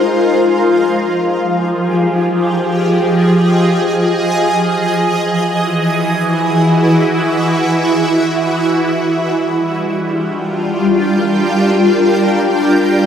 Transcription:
0.00 0.10 G#3 medium
0.00 1.87 D#4 medium
0.00 4.54 F4 medium
0.00 1.86 A#4 medium
0.00 1.87 C5 medium
0.09 4.54 F3 medium
0.37 8.99 G#4 medium
1.05 4.55 G4 medium
1.71 8.99 D#5 medium
4.55 8.99 E3 medium
4.80 9.00 F#4 medium
4.90 8.99 E4 medium
8.99 13.06 G3 medium
9.18 13.06 D4 medium
9.35 13.06 F4 medium
9.35 13.06 G5 medium
9.98 13.06 A#4 medium

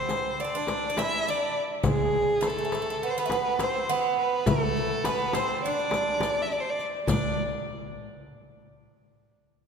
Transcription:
0.00 0.41 C4 medium
0.00 0.42 C5 medium
0.09 riq soft
0.09 darbuka tek medium
0.09 frame drum medium
0.39 0.47 D4 medium
0.39 1.00 D5 medium
0.39 darbuka ka soft
0.44 0.53 C4 medium
0.55 0.89 D4 medium
0.67 riq soft
0.67 darbuka tek medium
0.67 frame drum medium
0.90 0.97 D4 medium
0.97 1.28 E4 medium
0.97 1.31 E5 loud
0.97 riq soft
0.97 darbuka tek medium
0.97 frame drum medium
1.26 1.55 D4 medium
1.26 1.58 D5 medium
1.26 riq soft
1.26 darbuka ka soft
1.55 darbuka ka soft
1.83 2.45 G#3 medium
1.83 riq soft
1.83 frame drum medium
1.83 darbuka dum loud
1.89 2.49 G#4 medium
2.41 2.48 A3 medium
2.41 riq soft
2.41 darbuka tek medium
2.41 frame drum medium
2.47 2.57 A3 soft
2.47 3.08 A4 medium
2.59 2.64 A3 soft
2.65 2.72 A3 soft
2.72 2.81 A3 medium
2.72 riq soft
2.72 darbuka tek medium
2.82 2.88 A3 soft
2.90 2.96 A3 medium
3.02 3.15 B3 medium
3.02 darbuka ka soft
3.07 3.12 B4 medium
3.07 3.20 C5 medium
3.18 3.24 B3 medium
3.18 3.64 B4 medium
3.26 3.31 A3 medium
3.30 3.60 B3 medium
3.30 darbuka tek medium
3.30 frame drum medium
3.59 3.89 C4 medium
3.59 3.92 C5 medium
3.59 riq medium
3.59 darbuka tek medium
3.59 frame drum medium
3.89 4.43 B3 medium
3.89 4.18 B4 medium
3.89 riq soft
3.89 darbuka ka soft
4.18 4.49 B4 medium
4.18 darbuka ka soft
4.46 5.05 A3 medium
4.46 5.06 A4 medium
4.46 riq medium
4.46 frame drum medium
4.46 darbuka dum medium
4.77 riq soft
4.77 darbuka ka soft
5.04 5.34 B3 medium
5.04 5.35 B4 medium
5.04 riq soft
5.04 darbuka tek medium
5.04 frame drum medium
5.33 5.64 C4 medium
5.33 5.63 C5 medium
5.33 riq soft
5.33 darbuka tek medium
5.33 frame drum medium
5.64 6.41 D4 medium
5.64 6.44 D5 medium
5.64 riq soft
5.64 darbuka ka soft
5.78 riq soft
5.78 darbuka ka soft
5.91 riq soft
5.91 darbuka tek medium
5.91 frame drum medium
6.20 riq medium
6.20 darbuka tek medium
6.20 frame drum medium
6.42 6.54 E5 medium
6.51 6.62 D5 medium
6.51 riq soft
6.51 darbuka ka soft
6.60 6.72 C5 medium
6.70 6.79 D5 medium
6.79 riq soft
6.79 darbuka ka soft
7.07 7.36 D4 medium
7.07 7.35 D5 medium
7.07 riq medium
7.07 frame drum medium
7.07 darbuka dum medium

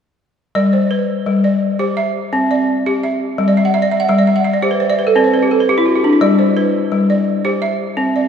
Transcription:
0.55 0.90 G3 medium
0.55 1.09 D5 medium
0.73 1.26 C5 medium
0.91 1.44 B4 medium
1.26 1.61 G3 medium
1.44 1.97 D5 medium
1.79 1.97 G4 medium
1.79 2.15 C5 soft
1.97 2.50 E5 medium
2.33 2.68 C4 medium
2.51 3.03 D5 medium
2.86 3.21 G4 medium
3.03 3.56 E5 medium
3.38 3.73 G3 medium
3.48 3.64 D5 medium
3.57 3.73 E5 medium
3.65 3.81 F#5 medium
3.74 3.90 E5 medium
3.82 3.99 D5 medium
3.91 4.07 E5 medium
4.00 4.16 F#5 medium
4.09 4.44 G3 medium
4.09 4.25 E5 medium
4.18 4.35 D5 medium
4.27 4.43 E5 medium
4.36 4.52 F#5 medium
4.44 4.61 E5 medium
4.53 4.70 D5 medium
4.62 4.80 G4 medium
4.62 4.78 C5 medium
4.71 4.87 B4 medium
4.80 4.97 C5 medium
4.90 5.05 D5 medium
4.99 5.14 B4 medium
5.07 5.23 A4 medium
5.16 5.50 C4 medium
5.16 5.32 B4 medium
5.24 5.40 C5 medium
5.34 5.49 B4 medium
5.42 5.58 G4 medium
5.51 5.67 A4 medium
5.60 5.76 B4 medium
5.69 5.85 G4 medium
5.78 5.94 E4 medium
5.86 6.02 F#4 medium
5.95 6.11 G4 medium
6.04 6.20 D4 medium
6.13 6.29 E4 medium
6.21 6.56 G3 medium
6.21 6.74 D5 medium
6.39 6.91 C5 medium
6.57 7.10 B4 medium
6.92 7.27 G3 medium
7.10 7.62 D5 medium
7.45 7.62 G4 medium
7.45 7.80 C5 medium
7.62 8.15 E5 medium
7.97 8.28 C4 medium
8.16 8.28 D5 medium

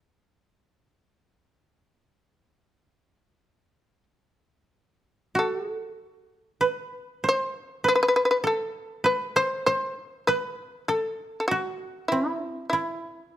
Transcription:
5.35 5.74 F#4 medium
5.35 7.21 A4 medium
5.74 7.25 A4 medium
6.61 7.30 B4 medium
7.24 7.90 C5 medium
7.29 7.83 C5 medium
7.84 9.04 B4 medium
7.88 7.94 B4 medium
7.95 8.01 B4 medium
8.03 8.07 B4 medium
8.08 8.14 B4 medium
8.16 8.22 B4 medium
8.25 8.30 B4 medium
8.31 8.36 B4 medium
8.44 10.34 A4 medium
8.44 9.03 A4 medium
9.04 9.42 B4 medium
9.04 9.34 B4 medium
9.36 9.67 C5 medium
9.36 9.65 C5 medium
9.66 10.23 C5 medium
9.66 10.34 C5 medium
10.27 10.84 B4 medium
10.27 12.06 B4 medium
10.88 11.38 A4 medium
10.88 12.79 A4 medium
11.40 11.47 A4 medium
11.48 12.04 F#4 medium
11.48 13.37 F#4 medium
12.08 12.46 E4 medium
12.08 12.72 E4 medium
12.46 12.64 C4 medium
12.70 13.37 E4 medium

